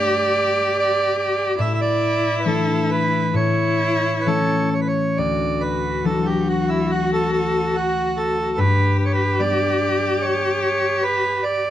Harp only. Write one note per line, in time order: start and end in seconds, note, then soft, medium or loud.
0.00 1.64 G2 medium
0.00 1.64 G3 medium
0.00 2.45 A3 soft
0.00 1.93 D4 medium
1.59 3.33 A2 medium
2.45 3.38 E3 soft
2.45 4.26 A3 soft
2.45 4.33 D4 soft
3.34 5.22 A2 medium
4.26 5.22 E3 soft
4.26 7.60 A3 soft
4.26 5.24 C#4 medium
5.18 8.63 D2 medium
6.04 8.63 E3 soft
6.04 8.63 F#3 soft
6.04 8.85 D4 soft
8.58 11.70 G2 medium
9.39 11.70 G3 soft
9.39 11.70 B3 soft
9.39 11.70 D4 soft